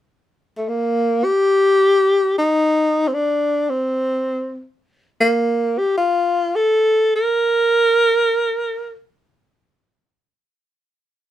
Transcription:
0.57 0.70 A3 medium
0.68 1.26 A#3 medium
1.24 2.36 G4 loud
2.38 3.09 D#4 medium
3.08 3.15 C4 medium
3.14 3.71 D4 medium
3.70 4.64 C4 medium
5.20 5.80 A#3 medium
5.78 5.96 G4 medium
5.97 6.57 F4 medium
6.55 7.14 A4 medium
7.16 8.97 A#4 medium

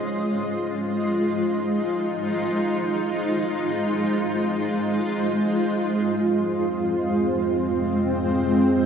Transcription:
0.00 8.86 G#3 medium
0.00 8.86 F4 medium
0.00 8.86 C5 medium
0.00 6.41 D#5 medium
0.51 6.32 D#4 medium
5.36 8.86 F2 medium
5.74 8.86 C4 medium
7.56 8.86 F5 medium

